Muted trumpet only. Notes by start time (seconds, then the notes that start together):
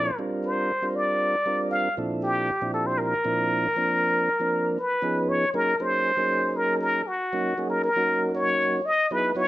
Already playing: D5
0.45 C5
0.95 D5
1.71 F5
2.23 G4
2.74 A4
2.87 C5
2.98 A#4
4.78 B4
5.29 C#5
5.55 A#4
5.81 C5
6.56 A#4
6.81 A#4
7.07 F#4
7.70 A#4
7.83 A#4
8.34 C#5
8.85 D#5
9.12 B4
9.36 C#5